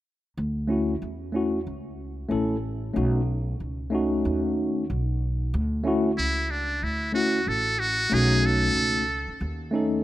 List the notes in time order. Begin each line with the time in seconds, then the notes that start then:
0.37 D2
0.67 A3 C#4 E4
0.71 F#4
1.02 E2
1.32 A3 C#4 E4
1.36 F#4
1.67 C#2
2.28 A1 A3 C#4 E4 A4
2.93 B1 A3 C#4 D#4
2.97 F#4
3.60 C#2
3.90 A3 C#4 D#4
3.95 F#4
4.25 D#2
4.90 B1
5.54 D2
5.84 A3 C#4 E4 F#4
6.18 C#2 E4
6.51 D4
6.82 D2 E4
7.12 A3 C#4 E4 F#4
7.17 F#4
7.47 A1 A4
7.80 F#4
8.10 B1 A3 C#4 D#4 G#4
8.14 F#4
8.46 A4
8.75 C#2
9.28 muted upright bass stroke
9.41 D#2
9.71 A3 C#4 D#4
9.75 A4